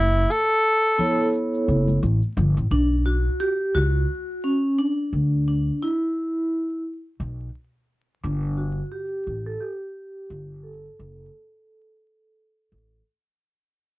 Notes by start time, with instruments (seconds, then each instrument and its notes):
Already playing: upright bass F#1, tenor saxophone E4
0.16 shaker
0.29 tenor saxophone A4, shaker
0.50 shaker
0.65 shaker
0.85 shaker
0.98 vibraphone B3 E4 A4 C#5, low conga, shaker
1.19 shaker
1.33 shaker
1.54 shaker
1.68 upright bass F#1, shaker
1.88 high conga, shaker
2.03 upright bass A1, high conga, shaker
2.22 shaker
2.37 upright bass G1, low conga, shaker
2.57 upright bass A1, shaker
2.71 upright bass B1, vibraphone D4
3.06 vibraphone F#4
3.40 vibraphone G4
3.75 upright bass C#2, vibraphone F#4
4.44 vibraphone C#4
4.79 vibraphone D4
5.13 upright bass D2
5.48 vibraphone D4
5.82 vibraphone E4
7.20 upright bass B1
8.23 upright bass G1, vibraphone D4
8.57 vibraphone F#4
8.92 vibraphone G4
9.27 upright bass A1
9.46 vibraphone A4
9.60 vibraphone G4
10.30 upright bass G1
10.63 vibraphone A4
10.99 upright bass F#1
12.72 upright bass A1